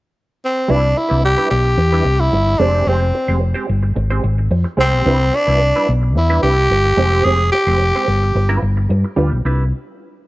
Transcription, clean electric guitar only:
0.68 0.88 G3 medium
0.68 0.83 D4 medium
0.68 0.83 E4 medium
0.68 0.82 B4 medium
0.83 muted clean electric guitar stroke soft
0.96 muted clean electric guitar stroke soft
1.09 1.22 G3 soft
1.09 1.22 D4 soft
1.09 1.23 E4 medium
1.09 1.23 B4 medium
1.23 muted clean electric guitar stroke soft
1.38 1.49 G3 medium
1.38 1.50 D4 medium
1.38 1.50 E4 medium
1.38 1.51 B4 medium
1.51 muted clean electric guitar stroke soft
1.65 muted clean electric guitar stroke soft
1.78 muted clean electric guitar stroke soft
1.92 2.04 G3 medium
1.92 2.05 D4 medium
1.92 2.05 E4 medium
1.92 2.05 B4 medium
2.06 muted clean electric guitar stroke soft
2.20 muted clean electric guitar stroke soft
2.33 muted clean electric guitar stroke soft
2.47 muted clean electric guitar stroke soft
2.60 2.75 G#3 medium
2.60 2.75 C4 medium
2.60 2.74 G4 medium
2.60 2.73 C5 medium
2.74 2.86 G#3 medium
2.74 2.87 C4 medium
2.74 2.87 G4 medium
2.74 2.88 C5 medium
2.87 3.06 G#3 medium
2.87 3.02 C4 medium
2.87 3.01 G4 medium
2.87 3.01 C5 medium
3.02 muted clean electric guitar stroke soft
3.14 muted clean electric guitar stroke soft
3.28 3.40 G#3 medium
3.28 3.41 C4 medium
3.28 3.41 G4 medium
3.28 3.42 C5 medium
3.41 muted clean electric guitar stroke soft
3.54 3.67 G#3 medium
3.54 3.67 C4 medium
3.54 3.67 G4 medium
3.54 3.68 C5 medium
3.68 muted clean electric guitar stroke soft
3.83 muted clean electric guitar stroke soft
3.96 muted clean electric guitar stroke soft
4.10 4.23 G#3 medium
4.10 4.24 C4 medium
4.10 4.24 G4 medium
4.10 4.24 C5 medium
4.24 muted clean electric guitar stroke soft
4.38 muted clean electric guitar stroke soft
4.51 muted clean electric guitar stroke soft
4.64 muted clean electric guitar stroke soft
4.77 4.93 G#3 medium
4.77 4.92 C4 medium
4.77 4.91 G4 medium
4.77 4.91 C5 loud
4.92 5.05 G#3 medium
4.92 5.06 C4 medium
4.92 5.06 G4 medium
4.92 5.06 C5 medium
5.05 5.25 G3 medium
5.05 5.20 D4 medium
5.05 5.19 E4 medium
5.05 5.18 B4 medium
5.19 muted clean electric guitar stroke medium
5.33 muted clean electric guitar stroke soft
5.47 5.59 G3 soft
5.47 5.60 D4 medium
5.47 5.60 E4 medium
5.47 5.61 B4 medium
5.61 muted clean electric guitar stroke soft
5.76 5.87 G3 medium
5.76 5.88 D4 medium
5.76 5.88 E4 medium
5.76 5.88 B4 medium
5.89 muted clean electric guitar stroke soft
6.02 muted clean electric guitar stroke soft
6.15 muted clean electric guitar stroke soft
6.30 6.41 G3 medium
6.30 6.42 D4 medium
6.30 6.42 E4 medium
6.30 6.43 B4 medium
6.43 6.58 G3 medium
6.43 6.58 D4 medium
6.43 6.58 E4 medium
6.43 6.57 B4 medium
6.58 muted clean electric guitar stroke soft
6.71 muted clean electric guitar stroke soft
6.85 muted clean electric guitar stroke soft
6.97 7.13 G#3 medium
6.97 7.12 C4 medium
6.97 7.11 G4 medium
6.97 7.11 C5 medium
7.12 7.24 G#3 medium
7.12 7.25 C4 medium
7.12 7.25 G4 medium
7.12 7.26 C5 medium
7.25 7.44 G#3 medium
7.25 7.40 C4 medium
7.25 7.40 G4 medium
7.25 7.39 C5 medium
7.40 muted clean electric guitar stroke medium
7.53 muted clean electric guitar stroke soft
7.67 7.80 G#3 soft
7.67 7.80 C4 soft
7.67 7.81 G4 soft
7.67 7.81 C5 medium
7.81 muted clean electric guitar stroke soft
7.96 8.07 G#3 medium
7.96 8.07 C4 medium
7.96 8.08 G4 medium
7.96 8.08 C5 medium
8.08 muted clean electric guitar stroke soft
8.23 muted clean electric guitar stroke soft
8.35 muted clean electric guitar stroke soft
8.49 8.61 G3 medium
8.49 8.61 D4 medium
8.49 8.62 F4 medium
8.49 8.62 B4 medium
8.62 muted clean electric guitar stroke soft
8.77 muted clean electric guitar stroke soft
8.89 muted clean electric guitar stroke soft
9.04 muted clean electric guitar stroke soft
9.16 9.36 G3 medium
9.16 9.32 D4 medium
9.16 9.31 F4 loud
9.16 9.30 B4 medium
9.32 muted clean electric guitar stroke soft
9.45 9.62 G3 medium
9.45 9.63 D4 medium
9.45 9.63 E4 medium
9.45 9.63 B4 medium

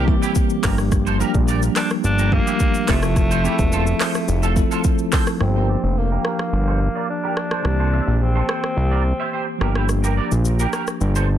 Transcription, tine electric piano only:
0.00 0.06 E3 medium
0.00 0.07 G3 medium
0.00 0.08 A#3 medium
0.00 0.08 C4 medium
0.00 0.09 G4 medium
0.06 0.63 E3 medium
0.06 0.62 G3 medium
0.06 0.63 A#3 medium
0.06 0.64 C4 medium
0.06 0.64 G4 loud
0.62 1.08 F3 medium
0.62 1.09 G3 medium
0.62 1.09 A#3 medium
0.62 1.09 D4 medium
0.62 1.10 G4 loud
1.19 1.97 F3 medium
1.19 1.98 G3 medium
1.19 1.98 A#3 medium
1.19 1.98 D4 medium
1.19 1.99 G4 loud
2.31 2.86 F3 medium
2.31 2.88 G3 medium
2.31 2.39 A3 medium
2.31 2.89 D4 medium
2.31 2.88 G4 medium
2.39 2.92 A#3 medium
2.87 3.33 F3 medium
2.87 3.33 A3 medium
2.87 3.34 C4 medium
2.87 3.34 E4 medium
2.87 2.96 G4 medium
2.96 3.37 A4 medium
3.43 4.22 F3 medium
3.43 4.22 A3 medium
3.43 4.22 C4 medium
3.43 4.23 E4 medium
3.43 3.52 G#4 medium
3.52 4.26 A4 medium
4.55 5.14 F3 medium
4.55 5.15 A3 medium
4.55 5.15 C4 medium
4.55 5.15 E4 medium
4.55 5.16 A4 loud
5.38 7.60 F3 medium
5.38 7.60 A#3 medium
5.38 7.61 D4 medium
5.43 5.49 F4 medium
5.50 7.65 G4 medium
7.62 9.56 E3 medium
7.62 9.57 A#3 medium
7.62 9.57 C4 medium
7.67 9.58 G4 medium
9.58 11.38 F3 medium
9.58 11.38 A#3 medium
9.58 11.38 D4 medium
9.63 11.38 G4 medium

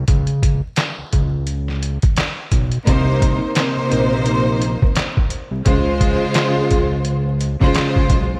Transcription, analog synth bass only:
0.08 0.62 C#2 loud
0.98 1.04 C#2 soft
1.13 1.99 C#2 medium
2.52 2.79 B1 medium
2.87 3.41 C2 loud
3.77 3.83 A#1 soft
3.92 4.78 A#1 medium
5.51 5.63 C2 medium
5.66 6.20 C#2 loud
6.56 6.62 C#2 soft
6.71 7.57 C#2 loud
8.10 8.37 B1 medium

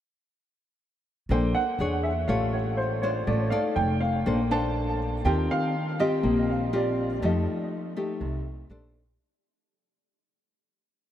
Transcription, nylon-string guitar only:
1.30 1.77 A#3 soft
1.30 1.63 D4 soft
1.30 1.63 A4 soft
1.30 1.63 C5 soft
1.80 2.11 D4 soft
1.80 2.12 G#4 soft
1.80 2.12 C#5 soft
2.28 3.25 A3 soft
2.28 2.99 F4 soft
2.28 2.99 G4 soft
2.28 2.99 C#5 soft
3.03 3.48 D4 soft
3.03 3.48 F4 medium
3.03 3.49 C5 soft
3.27 3.74 A3 soft
3.51 4.24 D#4 soft
3.51 4.24 A4 medium
3.51 4.24 D5 medium
4.26 5.22 A#3 soft
4.26 4.40 D4 soft
4.26 4.41 A4 soft
4.26 4.41 C5 soft
4.51 5.21 D4 soft
4.51 5.21 A4 medium
4.51 5.21 C5 medium
5.25 6.21 D#3 soft
5.25 5.74 C4 soft
5.25 5.74 F4 soft
5.25 5.74 G4 soft
6.00 6.69 C4 medium
6.00 6.69 F4 soft
6.00 6.70 G4 medium
6.23 7.20 A#3 soft
6.73 7.18 C4 soft
6.73 7.18 F4 medium
6.73 7.19 G4 soft
7.22 8.18 F3 soft
7.22 7.92 A3 soft
7.22 7.93 D#4 soft
7.22 7.93 G4 soft
7.96 8.66 A3 soft
7.96 8.66 D#4 medium
7.96 8.67 G4 medium
8.21 8.68 C3 soft
8.70 9.02 D4 soft
8.70 9.02 A4 soft
8.70 9.02 C5 medium

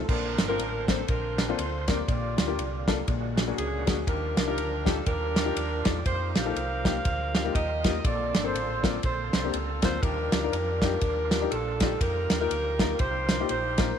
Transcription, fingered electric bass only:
0.09 0.34 A#1 loud
0.39 0.56 G1 medium
0.59 1.01 A1 medium
1.09 1.51 A#1 loud
1.59 2.01 D2 medium
2.09 2.34 A#1 medium
2.38 2.55 D2 loud
2.58 3.00 C2 medium
3.08 3.50 A#1 loud
3.58 3.83 C#2 medium
3.88 4.04 D2 medium
4.08 4.33 D#2 loud
4.37 4.54 C2 loud
4.57 4.99 D2 medium
5.07 5.49 D#2 medium
5.56 5.81 D#2 medium
5.86 6.03 E2 medium
6.06 6.31 F2 medium
6.35 6.52 A#1 loud
6.56 6.98 C2 medium
7.05 7.48 D2 medium
7.55 7.97 D#2 medium
8.05 8.30 A#1 loud
8.34 8.51 G1 medium
8.55 8.97 A1 medium
9.04 9.29 A#1 medium
9.34 9.51 C2 medium
9.54 9.79 C#2 medium
9.83 10.00 D2 medium
10.03 10.28 D#2 loud
10.33 10.50 D2 medium
10.53 10.95 F2 loud
11.02 11.44 D#2 medium
11.52 11.94 A#1 medium
12.01 12.26 F2 loud
12.31 12.48 D#2 loud
12.51 12.93 D2 medium
13.00 13.42 C2 loud
13.50 13.92 A#1 medium

